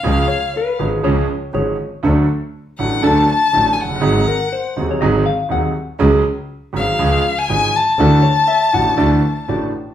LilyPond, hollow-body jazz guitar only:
\new Staff \with { instrumentName = "Hollow-body jazz guitar" } { \time 4/4 \key cis \phrygian \tempo 4 = 120 r8 cis''8 b'4 cis''4 cis''4~ | cis''4 r2. | r8 ais'8 bis'8. cis''16 dis''8 eis''8 fis''4~ | fis''4 r2. |
r8 cis''8 e''8 fis''8 d''4 d''4 | }